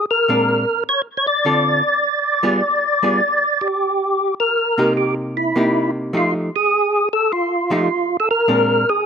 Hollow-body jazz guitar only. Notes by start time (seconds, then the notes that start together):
0.29 A#2 G#3 C4 D4
1.45 D3 C4 F4 A4
2.43 G3 B3 F4 G#4
3.03 G3 B3 F4 G#4
4.78 C3 A#3 D#4 G4
5.56 C3 A#3 D#4 G4
6.13 F3 A3 D#4 G4
7.70 F3 A3 D#4 G4
8.48 A#2 G#3 C4 D4